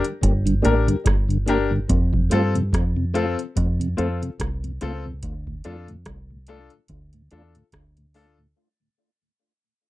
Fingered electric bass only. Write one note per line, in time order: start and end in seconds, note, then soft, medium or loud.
0.23 0.62 G1 loud
0.65 0.87 A1 medium
1.06 1.85 G1 medium
1.90 2.29 F2 loud
2.33 2.71 G2 medium
2.74 3.35 F2 medium
3.57 3.96 F2 loud
3.99 4.21 F2 medium
4.40 4.79 C2 medium
4.83 5.21 C#2 medium
5.23 5.62 D2 loud
5.66 6.04 F2 medium
6.06 6.68 C2 medium
6.90 7.29 D2 loud
7.33 7.55 E2 medium
7.73 8.53 D2 medium